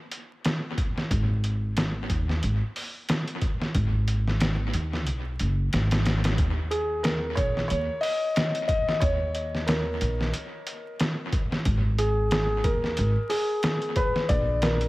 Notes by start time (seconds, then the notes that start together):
0.12 closed hi-hat
0.45 snare, closed hi-hat
0.78 kick, closed hi-hat
0.98 snare
1.11 G#1, kick, closed hi-hat
1.44 closed hi-hat
1.77 snare, closed hi-hat
2.10 D#2, kick, closed hi-hat
2.29 snare
2.43 G#1, closed hi-hat
2.76 open hi-hat
3.09 snare, closed hi-hat
3.28 closed hi-hat
3.42 kick, closed hi-hat
3.62 snare
3.75 G#1, kick, closed hi-hat
4.08 closed hi-hat
4.28 snare
4.40 snare, closed hi-hat
4.73 D#2, closed hi-hat
4.93 snare
5.07 B1, closed hi-hat
5.39 F#1, closed hi-hat
5.73 G#1, snare, closed hi-hat
5.91 snare, closed hi-hat
6.05 snare, closed hi-hat
6.24 snare, closed hi-hat
6.38 D#2, kick, closed hi-hat
6.71 G#4, closed hi-hat
7.03 A#4, snare, closed hi-hat
7.35 A#1 C#5, kick, closed hi-hat
7.57 snare
7.68 D#2 C#5, closed hi-hat
8.01 D#5, open hi-hat
8.36 snare, closed hi-hat
8.55 closed hi-hat
8.68 D#5, kick, closed hi-hat
8.89 snare
9.00 D#2 C#5, kick, closed hi-hat
9.35 closed hi-hat
9.55 snare
9.66 A#4, snare, closed hi-hat
10.01 A#1, closed hi-hat
10.21 snare
10.34 closed hi-hat
10.67 closed hi-hat
11.00 snare, closed hi-hat
11.32 kick, closed hi-hat
11.52 snare
11.65 G#1, kick, closed hi-hat
11.98 G#4, closed hi-hat
12.31 G#4, snare, closed hi-hat
12.64 D#2 A#4, kick, closed hi-hat
12.84 snare
12.97 G#1, closed hi-hat
13.29 G#4, open hi-hat
13.63 snare, closed hi-hat
13.82 closed hi-hat
13.96 B4, kick, closed hi-hat
14.16 snare
14.29 A#1 D5, kick, closed hi-hat
14.62 A#4, snare, closed hi-hat
14.81 closed hi-hat